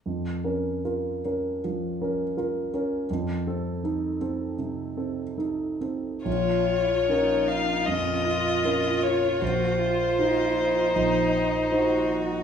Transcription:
X:1
M:4/4
L:1/8
Q:1/4=78
K:Bbm
V:1 name="Violin"
z8 | z8 | d3 f e3 d | c6- c z |]
V:2 name="Cello"
z8 | z8 | F2 E2 D F3 | G F3 E2 G2 |]
V:3 name="Grand piano"
F,, [DB] [FB] [DB] F, [DB] [FB] [DB] | F,, [C=A] [EA] [CA] C, [CA] [EA] [CA] | B,,,2 [DFB]2 F,,2 [DFB]2 | B,,,2 [EGc]2 B,,,2 [EGc]2 |]
V:4 name="Violin"
z8 | z8 | F8- | F2 E6 |]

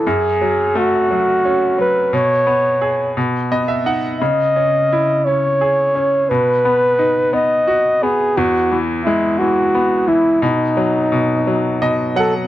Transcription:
X:1
M:6/8
L:1/16
Q:3/8=58
K:Bmix
V:1 name="Flugelhorn"
G4 F6 B2 | c6 z6 | d6 c6 | B6 d4 G2 |
F2 z2 E2 F4 E2 | D8- D2 A2 |]
V:2 name="Grand piano"
z12 | z8 d e f2 | z12 | z12 |
z12 | z8 d2 f2 |]
V:3 name="Grand piano" clef=bass
F,,2 F,2 A,2 F,2 C2 F,2 | B,,2 B,2 G2 B,,2 B,2 D2 | C,2 C2 E2 C2 G2 C2 | B,,2 B,2 D2 B,2 F2 B,2 |
E,,2 E,2 G,2 E,2 B,2 E,2 | B,,2 F,2 B,,2 F,2 B,,2 F,2 |]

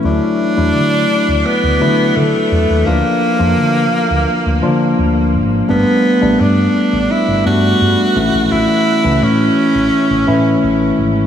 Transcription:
X:1
M:4/4
L:1/16
Q:1/4=85
K:Amix
V:1 name="Tenor saxophone"
D8 B,4 A,4 | _B,12- B,2 z2 | B,4 D4 E2 F6 | E4 C8- C2 z2 |]
V:2 name="Tine electric piano"
[F,A,DE]2 z [F,A,DE]4 z3 [F,A,DE]4 z2 | [=F,_B,D=F]2 z [F,B,DF]4 z3 [F,B,DF]4 z2 | [G,A,B,D]2 z [G,A,B,D]4 z3 [G,A,B,D]4 [E,A,CE]2- | [E,A,CE]2 z [E,A,CE]4 z3 [E,A,CE]4 z2 |]
V:3 name="Fretless electric bass" clef=bass
D,, z2 E,, D,2 z D,, z D,, D,2 D, z E,, _E,, | D,, z2 =F,, D,2 z D,, z D,, D,2 D,,2 ^G,,,2 | G,,, z2 A,,, G,,2 z A,,, z G,,, G,,2 G,, z A,,, _B,,, | A,,, z2 C,, A,,2 z A,,, z A,,, A,,2 A,,,2 ^G,,,2 |]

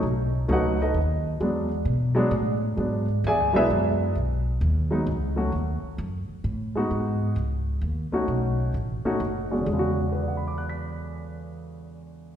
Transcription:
X:1
M:3/4
L:1/8
Q:"Swing" 1/4=131
K:Emix
V:1 name="Grand piano"
z2 [FB^df] [^DABd] z2 | z6 | z2 [Gdeg] [EGBe] z2 | z6 |
z6 | z6 | z6 | z2 [Bdfbd'f'b']4- |
[Bdfbd'f'b']6 |]
V:2 name="Grand piano"
z2 [F,A,C^D] z3 | [F,G,B,D] z2 [F,G,B,D] z2 | [F,G,B,D] z2 [F,G,B,D]3 | z3 [F,G,B,^D] z [F,A,CF] |
z4 z [G,B,^DF]- | [G,B,^DF]2 z3 [A,CDF]- | [A,C^DF]2 z [A,CDF] z [E,,G,C=DF] | [E,,C,D,G,F]6- |
[E,,C,D,G,F]6 |]
V:3 name="Upright bass" clef=bass
B,,,2 C,,2 ^D,,2 | E,,2 B,,2 A,,2 | G,,2 (3E,, D,, B,,, F,,2 | B,,,2 ^D,,2 C,,2 |
^D,, z F,, z A,,2 | G,,2 C,,2 ^D,, z | B,,,2 A,,, z F,,,2 | E,,6- |
E,,6 |]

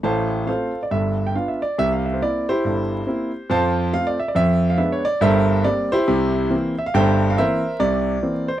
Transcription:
X:1
M:4/4
L:1/16
Q:"Swing" 1/4=139
K:F
V:1 name="Grand piano"
[cfa]4 [Acf]3 d e3 g f e d2 | e f e c d2 [EGc]8- [EGc]2 | [cfa]4 f d e d e3 f e _d =d2 | [Bce]4 d2 [EGc]8 e f |
[ceg]3 f [Bce]4 d6 c z |]
V:2 name="Grand piano" clef=bass
[A,,,A,,]4 [A,CF]4 [G,,,G,,]4 [=B,DF]4 | [C,,C,]4 [B,CE]4 [G,,,G,,]4 [B,CE]4 | [F,,F,]4 [A,CF]4 [F,,F,]4 [_A,_CD]4 | [G,,,G,,]4 [G,B,C]4 [C,,C,]4 [E,B,C]4 |
[G,,,G,,]4 [E,B,C]4 [C,,C,]4 [E,B,C]4 |]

